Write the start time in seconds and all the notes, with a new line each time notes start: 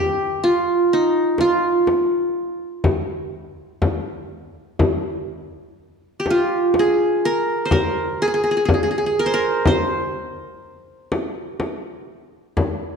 Already playing: G4
0.44 F4
0.93 D#4
1.38 F4, frame drum
1.87 frame drum
2.84 frame drum
3.82 frame drum
4.79 frame drum
6.20 G4
6.26 frame drum
6.30 F4
6.74 frame drum
6.79 G#4
7.25 A#4
7.65 C5
7.71 A#4, frame drum
8.22 G#4
8.28 G#4
8.34 G#4
8.44 G#4
8.51 G#4
8.57 G#4
8.65 G#4, frame drum
8.74 G#4
8.83 G#4
8.91 G#4
8.98 G#4
9.06 G#4
9.19 A#4
9.26 C5
9.34 A#4
9.65 C5, frame drum
11.12 frame drum
11.60 frame drum
12.57 frame drum